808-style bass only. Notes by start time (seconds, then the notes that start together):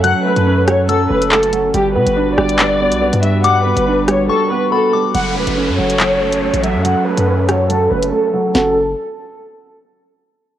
Already playing: F#2
0.36 F#2
1.10 F#1
1.74 G1
1.95 B2
2.07 G1
2.38 G1
2.92 B1
3.13 G2
3.77 G1
5.14 F#1
5.36 E1
5.47 F#1
5.68 F#2
5.78 F#1
6.53 A1
6.75 F#2
7.17 F#2
7.91 F#1
8.55 F#1